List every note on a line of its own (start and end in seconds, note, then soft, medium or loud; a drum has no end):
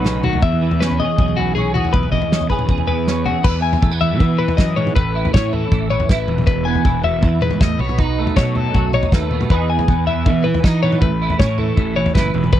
0.00 0.42 B1 loud
0.00 0.41 F#3 medium
0.00 0.43 A3 medium
0.00 0.41 D#4 medium
0.00 0.41 F#4 medium
0.00 0.23 B4 medium
0.04 0.24 C#3 medium
0.04 snare medium
0.04 mid tom medium
0.24 0.43 D#3 medium
0.24 0.42 F#4 medium
0.24 floor tom medium
0.24 mid tom medium
0.33 floor tom medium
0.42 1.05 E2 medium
0.42 1.94 E2 medium
0.42 0.80 E5 medium
0.42 kick loud
0.42 floor tom medium
0.52 floor tom medium
0.62 1.38 E3 medium
0.71 floor tom medium
0.81 1.57 C#4 medium
0.81 0.99 B4 medium
0.81 snare medium
0.90 floor tom medium
1.00 1.20 G#4 medium
1.00 1.37 D#5 medium
1.00 floor tom medium
1.18 1.81 B1 loud
1.18 1.76 G#4 medium
1.18 kick medium
1.18 floor tom medium
1.28 floor tom medium
1.37 2.12 E3 medium
1.37 1.55 F#4 medium
1.37 floor tom medium
1.55 1.92 C#4 medium
1.55 1.74 G#4 medium
1.55 mid tom medium
1.74 1.93 F#4 medium
1.74 2.51 G#4 medium
1.74 floor tom medium
1.74 mid tom medium
1.85 floor tom medium
1.93 2.09 B1 loud
1.93 3.43 E2 medium
1.93 2.11 B4 medium
1.93 kick medium
1.93 floor tom medium
2.03 floor tom medium
2.12 2.28 E2 medium
2.12 2.86 E3 medium
2.12 2.49 D#5 medium
2.12 kick medium
2.12 mid tom medium
2.22 floor tom medium
2.32 3.06 C#4 medium
2.32 snare medium
2.41 floor tom medium
2.49 2.66 E2 medium
2.49 2.69 G#4 medium
2.49 2.86 B4 medium
2.49 kick medium
2.49 floor tom medium
2.59 mid tom medium
2.68 3.31 E2 medium
2.68 3.25 G#4 medium
2.68 kick medium
2.68 floor tom medium
2.78 floor tom medium
2.87 4.00 E3 medium
2.87 3.26 B4 medium
2.87 floor tom medium
3.07 3.43 C#4 medium
3.07 snare medium
3.26 3.45 F#4 medium
3.26 3.42 G#4 medium
3.26 floor tom medium
3.44 3.76 E2 loud
3.44 4.57 E2 medium
3.44 3.62 B4 medium
3.44 kick loud
3.44 floor tom medium
3.44 crash loud
3.62 4.00 G#5 medium
3.73 floor tom medium
3.82 4.20 E2 medium
3.82 3.91 A3 medium
3.82 kick loud
3.82 mid tom medium
3.91 4.96 B3 medium
4.01 4.38 E3 medium
4.01 4.39 E5 medium
4.01 floor tom medium
4.20 4.39 B2 medium
4.20 4.52 E3 loud
4.20 kick loud
4.20 floor tom medium
4.38 5.52 E3 medium
4.38 4.58 B4 medium
4.38 mid tom medium
4.48 floor tom medium
4.57 4.76 F#2 medium
4.57 4.89 E3 medium
4.57 4.77 D#5 medium
4.57 kick loud
4.57 snare medium
4.76 4.96 G#2 medium
4.76 4.95 C#5 medium
4.76 mid tom medium
4.87 mid tom medium
4.96 5.27 A1 medium
4.96 6.26 A2 medium
4.96 5.33 B4 medium
4.96 kick loud
4.96 floor tom medium
5.15 6.10 E4 medium
5.25 floor tom medium
5.34 5.65 A2 medium
5.34 6.26 C#4 medium
5.34 5.53 C#5 medium
5.34 kick loud
5.34 snare medium
5.34 mid tom medium
5.52 5.71 E3 medium
5.52 5.90 A4 medium
5.52 floor tom medium
5.72 6.03 A1 loud
5.72 5.90 E3 medium
5.72 kick loud
5.72 floor tom medium
5.90 6.84 E3 medium
5.90 6.09 C#5 medium
5.90 mid tom medium
6.00 floor tom medium
6.09 6.25 A1 loud
6.09 6.27 E4 medium
6.09 6.45 B4 medium
6.09 kick loud
6.09 snare medium
6.27 6.75 E1 loud
6.27 7.41 E2 medium
6.27 mid tom medium
6.38 mid tom medium
6.47 6.66 B4 medium
6.47 kick loud
6.47 floor tom medium
6.65 8.18 B3 medium
6.65 7.03 G#5 medium
6.75 floor tom medium
6.85 7.23 E1 medium
6.85 7.22 E3 medium
6.85 kick loud
6.85 mid tom medium
7.03 7.23 B2 medium
7.03 7.42 E5 medium
7.03 floor tom medium
7.22 7.54 E2 medium
7.22 7.80 E3 medium
7.22 kick medium
7.22 floor tom medium
7.42 7.60 G#2 medium
7.42 7.61 B4 medium
7.42 mid tom medium
7.51 floor tom medium
7.60 7.76 E2 medium
7.60 7.79 A2 medium
7.60 7.80 D#5 medium
7.60 kick loud
7.60 snare medium
7.79 8.26 B1 loud
7.79 8.55 B2 medium
7.79 7.99 C#5 medium
7.79 mid tom medium
7.89 mid tom medium
7.98 8.93 D#4 medium
7.98 8.36 B4 medium
7.98 kick loud
7.98 floor tom medium
8.19 9.13 A3 medium
8.27 floor tom medium
8.36 8.68 B2 medium
8.36 8.73 F#3 medium
8.36 8.56 C#5 medium
8.36 kick loud
8.36 snare medium
8.36 mid tom medium
8.56 9.29 F#2 medium
8.56 8.94 A4 medium
8.56 floor tom medium
8.74 9.06 B1 loud
8.74 9.29 F#3 medium
8.74 kick loud
8.74 floor tom medium
8.93 9.29 D#4 medium
8.93 9.13 C#5 medium
8.93 mid tom medium
9.03 floor tom medium
9.12 9.43 D#2 loud
9.12 9.51 A3 medium
9.12 9.50 B4 medium
9.12 kick loud
9.12 snare medium
9.31 9.51 B2 medium
9.31 mid tom medium
9.41 mid tom medium
9.50 9.81 E2 medium
9.50 11.01 E2 medium
9.50 10.07 E3 medium
9.50 9.88 B3 medium
9.50 9.70 D#4 medium
9.50 11.01 G#4 medium
9.50 9.70 B4 medium
9.50 kick loud
9.50 floor tom medium
9.70 10.07 G#5 medium
9.79 floor tom medium
9.88 10.28 E2 medium
9.88 10.83 B3 medium
9.88 kick loud
9.88 mid tom medium
10.07 10.45 E3 medium
10.07 10.45 E5 medium
10.07 floor tom medium
10.26 10.45 B2 medium
10.26 10.57 E3 loud
10.26 kick loud
10.26 floor tom medium
10.44 11.58 E3 medium
10.44 10.64 B4 medium
10.44 mid tom medium
10.54 floor tom medium
10.64 10.95 E3 medium
10.64 11.00 D#4 medium
10.64 10.82 D#5 medium
10.64 kick loud
10.64 snare medium
10.83 11.00 B3 medium
10.83 11.01 C#5 medium
10.83 mid tom medium
10.92 mid tom medium
11.01 11.33 A1 medium
11.01 12.32 A2 medium
11.01 11.39 B4 medium
11.01 kick loud
11.01 floor tom medium
11.22 12.15 E4 medium
11.30 floor tom medium
11.39 11.70 A2 medium
11.39 12.32 C#4 medium
11.39 11.59 C#5 medium
11.39 kick loud
11.39 snare medium
11.39 mid tom medium
11.58 11.75 E3 medium
11.58 11.96 A4 medium
11.58 floor tom medium
11.77 12.08 A1 loud
11.77 11.95 E3 medium
11.77 kick medium
11.77 floor tom medium
11.96 12.60 E3 medium
11.96 12.14 C#5 medium
11.96 mid tom medium
12.06 floor tom medium
12.15 12.31 F#1 loud
12.15 12.32 E4 medium
12.15 12.52 B4 medium
12.15 kick loud
12.15 snare medium
12.34 12.60 E1 medium
12.34 12.60 E2 medium
12.34 mid tom medium
12.44 mid tom medium
12.52 12.60 B4 medium
12.52 kick loud
12.52 floor tom medium